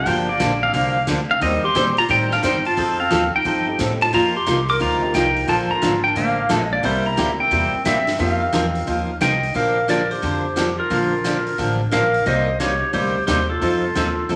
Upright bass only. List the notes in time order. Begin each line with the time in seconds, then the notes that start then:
0.06 G1
0.40 A#1
0.74 C2
1.08 D2
1.41 D#2
1.64 muted upright bass stroke
1.75 A#2
2.09 A2
2.43 G2
2.77 F2
3.12 D#2
3.34 muted upright bass stroke
3.45 G2
3.80 A2
4.13 F2
4.47 C2
4.81 D2
5.15 C2
5.48 A#1
5.71 muted upright bass stroke
5.83 G#1
6.16 A1
6.50 A#1
6.84 C2
7.18 D2
7.51 E2
7.74 muted upright bass stroke
7.86 G2
8.19 F2
8.53 E2
8.87 D#2
9.22 C2
9.55 A#1
10.23 F2
10.91 A#1
11.59 A1
11.92 A#1
12.26 C2
12.94 D2
13.28 D#2
13.62 F2
13.96 D#2
14.29 D2